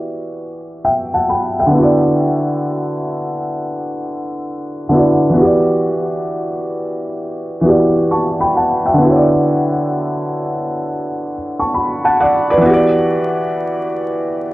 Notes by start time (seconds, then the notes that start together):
Already playing: E3 B3 F#4 G4 D5
0.85 E5 G5
1.14 F#5 A5
1.29 G5 B5
1.59 E5 G5
1.67 D3
1.71 B3 E4
1.79 F#4 D5
4.89 D3 B3 E4
4.95 F#4 D5
5.29 E3 B3
5.37 F#4 G4
5.45 D5
7.61 E3 B3
7.65 F#4 G4 D5
8.11 A5 C#6
8.40 G5 B5
8.56 F#5 A5
8.85 E5 G5
8.94 D3
8.98 B3 E4
9.06 F#4
9.10 C#5
9.16 D5
11.60 A5 C#6
11.74 B5
12.05 F#5 A5
12.20 D5 F#5
12.50 B4 D5
12.57 E3
12.62 B3 F#4
12.70 G4 D5